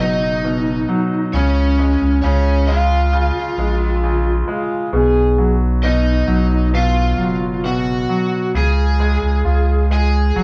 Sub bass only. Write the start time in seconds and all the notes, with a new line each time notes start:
0.00 F#1
1.33 C#2
2.01 C#2
2.23 C#2
3.57 A#1
4.93 B1
6.28 B1
7.18 F#1
8.54 C#2
9.22 C#2
9.45 C#2
10.36 F#1